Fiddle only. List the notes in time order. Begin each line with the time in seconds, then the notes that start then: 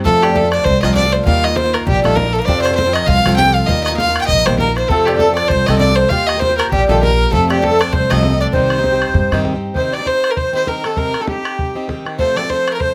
0.04 A4
0.23 G4
0.36 A4
0.52 D5
0.64 C5
0.82 D#5
0.95 D5
1.13 C5
1.25 F5
1.44 D#5
1.56 C5
1.73 A#4
1.87 G4
2.04 A4
2.16 A#4
2.33 A4
2.39 A#4
2.45 D5
2.62 C5
2.75 C5
2.93 D#5
3.06 F5
3.36 G5
3.54 F5
3.66 D#5
3.84 D#5
3.97 F5
4.21 G5
4.27 D#5
4.46 C5
4.59 A#4
4.77 C5
4.88 A4
5.06 G4
5.18 A4
5.35 D5
5.48 C5
5.66 D#5
5.78 D5
5.95 C5
6.09 F5
6.27 D#5
6.40 C5
6.57 A#4
6.70 G4
6.89 A4
7.02 A#4
7.33 A4
7.50 G4
7.63 A4
7.81 D5
7.93 C5
8.10 D#5
8.41 D5
8.53 C5
9.77 C5
9.94 D5
10.08 C5
10.31 A#4
10.37 C5
10.55 C5
10.68 A#4
10.86 A4
10.97 A#4
11.21 A4
11.28 G4
12.19 C5
12.36 D5
12.50 C5
12.73 A#4
12.80 C5